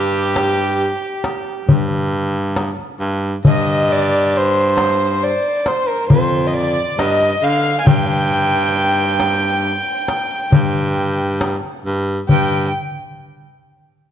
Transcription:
Already playing: G2 G4
0.36 darbuka tek
1.24 darbuka tek
1.68 G2, darbuka dum
2.56 darbuka tek
2.79 darbuka ka
3.00 G2, darbuka ka
3.45 G2 D#5, darbuka dum
3.89 D5
4.34 C5
4.77 darbuka tek
5.23 D5
5.66 C5, darbuka tek
5.88 A#4
6.09 F2 C5, darbuka dum
6.47 D#5
6.54 D5
6.98 G2 D#5, darbuka tek
7.21 darbuka ka
7.42 D3 F5, darbuka ka
7.80 G#5
7.86 G2 G5, darbuka dum
9.20 darbuka tek
10.08 darbuka tek
10.52 G2, darbuka dum
10.97 darbuka ka
11.41 darbuka tek
11.63 darbuka ka
11.85 G2, darbuka ka
12.29 G2 G5, darbuka dum

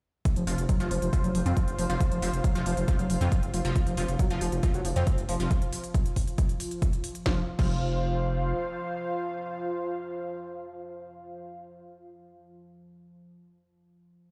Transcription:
0.25 F3 F4, kick, closed hi-hat
0.34 F1 F3 C5, closed hi-hat
0.47 F1 C3 F3 F4, open hi-hat
0.58 F1, closed hi-hat
0.69 F#3, kick, closed hi-hat
0.80 F1 C3 F3 F4, closed hi-hat
0.91 F1 F3, open hi-hat
1.02 F1 F3, closed hi-hat
1.13 C3 F3 F4, kick, closed hi-hat
1.24 F1 F#3 F5, closed hi-hat
1.35 F1 F3, open hi-hat
1.46 F2 C3 F3 C4 F4, closed hi-hat
1.57 F3, kick, closed hi-hat
1.68 F1, closed hi-hat
1.78 F1 F3, open hi-hat
1.89 F1 C3 F3 F4, closed hi-hat
2.00 kick, closed hi-hat
2.11 F1 F3, closed hi-hat
2.22 F1 C3 F3 F4, open hi-hat
2.33 F1, closed hi-hat
2.44 F#3, kick, closed hi-hat
2.55 F1 C3 F3 F4, closed hi-hat
2.66 F1 F3, open hi-hat
2.77 F1 F3, closed hi-hat
2.88 C3 F3 F4, kick, closed hi-hat
2.99 F1 F#3, closed hi-hat
3.10 F1 F3, open hi-hat
3.21 F2 C3 F3 C4 F4, closed hi-hat
3.32 F3, kick, closed hi-hat
3.43 F1, closed hi-hat
3.54 F1 F3, open hi-hat
3.65 F1 C3 F3 F4, closed hi-hat
3.76 kick, closed hi-hat
3.87 F1 F3, closed hi-hat
3.97 F1 C3 F3 F4, open hi-hat
4.08 F1, closed hi-hat
4.19 F#3, kick, closed hi-hat
4.30 F1 C3 F3 F4, closed hi-hat
4.41 F1 F3, open hi-hat
4.52 F1 F3, closed hi-hat
4.63 C3 F3 F4, kick, closed hi-hat
4.74 F1 F#3, closed hi-hat
4.85 F1 F3, open hi-hat
4.96 F2 C3 F3 C4 F4, closed hi-hat
5.07 F3, kick, closed hi-hat
5.18 F1, closed hi-hat
5.29 F1 F3, open hi-hat
5.40 F1 C3 F3 F4, closed hi-hat
5.51 kick, closed hi-hat
5.62 closed hi-hat
5.73 open hi-hat
5.84 closed hi-hat
5.94 kick, closed hi-hat
6.06 closed hi-hat
6.16 kick, open hi-hat
6.27 closed hi-hat
6.38 kick, closed hi-hat
6.49 closed hi-hat
6.60 open hi-hat
6.71 closed hi-hat
6.82 kick, closed hi-hat
6.93 closed hi-hat
7.04 open hi-hat
7.15 closed hi-hat
7.26 F1 C3 F3 F4, kick, snare
7.33 C5
7.39 F5
7.59 F1 C3 F3 F4, kick, crash

